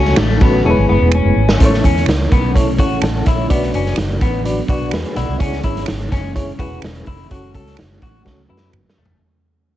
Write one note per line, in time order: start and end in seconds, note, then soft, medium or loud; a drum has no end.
0.00 0.13 C#2 loud
0.00 0.64 F#3 medium
0.00 0.23 A3 medium
0.00 0.64 A3 medium
0.00 0.14 C#4 medium
0.00 0.23 C#4 medium
0.00 0.63 C#4 medium
0.00 0.23 F#4 medium
0.00 0.23 A4 medium
0.00 0.23 C#5 loud
0.06 snare soft
0.06 ride soft
0.16 0.37 A1 loud
0.16 0.37 A3 medium
0.16 finger snap loud
0.16 snare loud
0.16 ride medium
0.41 0.60 A1 medium
0.41 0.65 A3 medium
0.41 0.61 B3 medium
0.41 0.65 C#4 medium
0.41 0.65 F#4 medium
0.41 0.64 A4 medium
0.41 0.65 B4 loud
0.41 kick loud
0.41 ride medium
0.64 0.75 E1 loud
0.64 1.58 E3 medium
0.64 1.40 G#3 loud
0.64 1.59 G#3 medium
0.64 1.41 B3 medium
0.64 1.59 B3 medium
0.64 0.85 C#4 medium
0.64 1.41 E4 medium
0.64 1.41 G#4 medium
0.64 0.71 A4 medium
0.70 1.44 B4 loud
0.78 0.87 G#1 loud
0.89 0.99 F#1 medium
0.89 1.08 B3 medium
1.01 1.20 E1 medium
1.12 1.58 C#4 medium
1.12 finger snap loud
1.25 1.34 F#1 medium
1.36 1.55 G#1 medium
1.49 snare loud
1.59 1.79 A1 loud
1.59 3.48 E3 medium
1.59 3.48 A3 medium
1.59 1.80 A3 medium
1.59 2.25 C#4 medium
1.59 3.48 C#4 medium
1.59 2.26 E4 medium
1.59 2.26 A4 medium
1.59 1.65 C5 medium
1.59 kick loud
1.59 closed hi-hat loud
1.65 2.29 C#5 loud
1.74 snare soft
1.84 2.03 E2 loud
1.84 2.04 C#4 medium
1.84 kick medium
1.84 closed hi-hat medium
1.97 snare soft
1.97 closed hi-hat soft
2.06 2.26 C#2 medium
2.06 finger snap loud
2.06 snare loud
2.06 closed hi-hat loud
2.32 2.79 B1 medium
2.32 2.51 B3 medium
2.32 kick loud
2.32 closed hi-hat medium
2.55 2.71 C#4 medium
2.55 2.72 E4 medium
2.55 2.71 A4 medium
2.55 2.72 C#5 loud
2.55 kick medium
2.55 closed hi-hat medium
2.79 2.98 A1 medium
2.79 3.29 C#4 medium
2.79 3.28 E4 medium
2.79 2.98 F#4 medium
2.79 3.28 A4 medium
2.79 3.03 C#5 medium
2.79 kick loud
2.79 closed hi-hat medium
3.02 3.21 A1 medium
3.02 3.25 F#5 medium
3.02 3.25 A5 medium
3.02 finger snap loud
3.02 snare loud
3.02 closed hi-hat medium
3.26 3.46 A#1 medium
3.26 3.46 E4 medium
3.26 3.72 C#5 medium
3.26 3.72 E5 medium
3.26 kick medium
3.26 snare soft
3.26 closed hi-hat medium
3.49 3.69 B1 loud
3.49 5.39 F#3 medium
3.49 5.38 B3 medium
3.49 3.69 B3 medium
3.49 4.16 D4 medium
3.49 5.39 D4 medium
3.49 4.16 F#4 medium
3.49 4.16 B4 medium
3.49 4.16 D5 loud
3.49 kick loud
3.49 closed hi-hat loud
3.63 snare soft
3.73 3.93 F#1 medium
3.73 3.94 C#4 medium
3.73 closed hi-hat medium
3.87 snare soft
3.87 closed hi-hat soft
3.96 4.16 F#1 medium
3.96 finger snap loud
3.96 snare loud
3.96 closed hi-hat medium
4.21 4.60 A1 medium
4.21 4.41 B3 medium
4.21 kick medium
4.21 closed hi-hat medium
4.45 4.61 D4 medium
4.45 4.62 F#4 medium
4.45 4.62 B4 medium
4.45 4.62 D5 medium
4.45 closed hi-hat medium
4.68 4.88 B1 medium
4.68 5.18 D4 medium
4.68 5.19 F#4 medium
4.68 4.88 F#4 medium
4.68 4.92 B4 medium
4.68 4.93 D5 medium
4.68 kick loud
4.68 closed hi-hat medium
4.91 5.02 E2 loud
4.91 5.16 G#4 medium
4.91 5.15 B4 medium
4.91 finger snap loud
4.91 snare loud
4.91 closed hi-hat medium
5.04 closed hi-hat medium
5.16 5.26 B1 medium
5.16 5.36 E4 medium
5.16 5.62 D5 medium
5.16 5.62 F#5 medium
5.16 snare soft
5.16 closed hi-hat medium
5.28 5.38 C2 medium
5.39 5.59 C#2 loud
5.39 7.29 E3 medium
5.39 7.29 G#3 medium
5.39 6.05 C#4 medium
5.39 5.59 C#4 medium
5.39 9.18 C#4 medium
5.39 6.06 E4 medium
5.39 6.06 G#4 medium
5.39 6.06 C#5 loud
5.39 kick loud
5.39 closed hi-hat loud
5.53 snare soft
5.63 5.83 G#1 loud
5.63 5.83 E4 medium
5.63 kick medium
5.63 closed hi-hat medium
5.76 snare soft
5.76 closed hi-hat soft
5.86 6.08 G#1 medium
5.86 finger snap medium
5.86 snare loud
5.86 closed hi-hat medium
6.12 6.50 F#1 medium
6.12 6.31 C#4 medium
6.12 kick medium
6.12 closed hi-hat medium
6.35 6.52 C#4 medium
6.35 6.52 E4 medium
6.35 6.52 G#4 medium
6.35 6.52 C#5 medium
6.35 kick medium
6.35 closed hi-hat medium
6.58 6.78 E1 medium
6.58 7.08 C#4 medium
6.58 7.09 E4 medium
6.58 6.78 F#4 medium
6.58 7.09 G#4 medium
6.58 7.09 B4 medium
6.58 kick loud
6.58 closed hi-hat medium
6.82 7.02 E1 medium
6.82 finger snap loud
6.82 snare loud
6.82 closed hi-hat medium
6.95 closed hi-hat medium
7.06 7.26 F1 medium
7.06 7.26 E4 medium
7.06 kick medium
7.06 open hi-hat medium
7.29 7.56 F#1 loud
7.29 9.19 F#3 medium
7.29 9.19 A3 medium
7.29 7.97 C#4 medium
7.29 7.97 F#4 medium
7.29 7.50 F#4 medium
7.29 7.97 A4 medium
7.29 7.97 C#5 loud
7.29 kick loud
7.29 closed hi-hat loud
7.54 7.80 C#2 loud
7.54 7.74 A4 medium
7.54 kick medium
7.54 closed hi-hat medium
7.67 snare soft
7.67 closed hi-hat soft
7.77 7.98 F#1 medium
7.77 finger snap loud
7.77 snare loud
7.77 closed hi-hat medium
8.02 8.21 A1 medium
8.02 8.22 F#4 medium
8.02 kick medium
8.02 closed hi-hat medium
8.25 8.45 C#2 loud
8.25 8.42 C#4 medium
8.25 8.42 F#4 medium
8.25 8.42 A4 medium
8.25 8.42 C#5 medium
8.25 kick medium
8.25 snare medium
8.49 8.69 F#2 medium
8.49 8.99 C#4 medium
8.49 8.69 E4 medium
8.49 8.99 F#4 medium
8.49 8.99 A4 medium
8.49 8.99 B4 medium
8.57 snare medium
8.73 8.83 F#1 medium
8.73 finger snap loud
8.73 mid tom medium
8.89 snare loud
8.98 9.07 E1 medium
8.98 9.17 A3 medium
9.05 floor tom medium
9.10 9.19 F1 medium